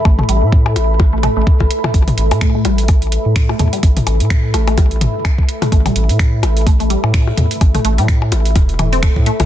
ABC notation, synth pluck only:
X:1
M:4/4
L:1/16
Q:"Swing 16ths" 1/4=127
K:C
V:1 name="Synth pluck"
A, A, G, z6 A, A, A, z4 | z4 A, A, G, z6 A, A, G, | z6 A, A, G, z6 A, | A, G, z6 A, A, G, z4 z |
z A, A, G, z6 E, C A, z A, z |]